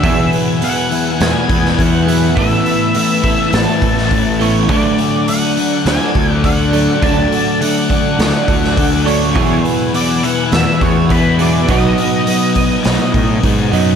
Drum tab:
HH |o-o-o-o-o-o-o-o-|o-o-o-o-o-o-o-o-|o-o-o-o-o-o-o-o-|o-o-o-o-o-o-o-o-|
SD |--------o--o----|--------o--o----|--------o-------|--------o--o----|
BD |o---------o-o---|o-----o---o-o---|o---------o-o---|o-----o---o-o---|

HH |o-o-o-o-o-o-o-o-|o-o-o-o-o-o-o-o-|
SD |--------o-------|--------o-------|
BD |o---------o-o---|o-----o---o-o---|